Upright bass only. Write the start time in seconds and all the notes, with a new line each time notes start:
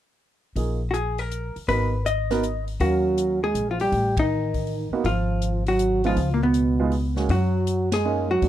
0.56 A#1
1.56 muted upright bass stroke
1.68 G#1
2.80 D#2
3.55 A#1
3.92 A1
4.91 muted upright bass stroke
5.04 G#1
6.17 C#2
7.29 F#2
8.42 E2